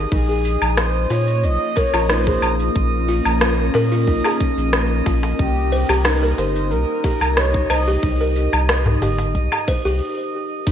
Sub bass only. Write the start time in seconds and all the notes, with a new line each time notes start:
0.12 A#1
0.62 A#1
1.10 A#2
1.43 A#1
1.94 A#1
2.42 A#1
2.76 A#1
3.26 A#1
3.75 A#2
4.08 A#1
4.58 A#1
5.06 A#1
5.39 C2
5.89 C2
6.38 G1
6.71 C2
7.21 C2
7.70 C2
8.03 C2
8.53 C2
9.02 G1
9.35 C2
9.85 C2
10.67 F1